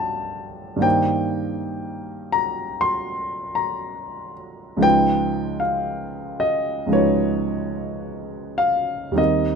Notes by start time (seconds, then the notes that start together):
Already playing: G2 F3 B3 D4 C#5 F5 G5 A5
0.76 G2 D#3 A#3
0.81 D#4 C5 G5
2.32 A#5
2.81 C6
3.55 A#5
4.77 C#2 F3 G#3
4.81 D#4 B4 G5
5.60 F5
6.40 D#5
6.87 C#2 F3 G#3
6.91 D#4 B4 C#5
8.58 F5
9.11 D#2 G3 C4 D#4
9.17 A#4 D#5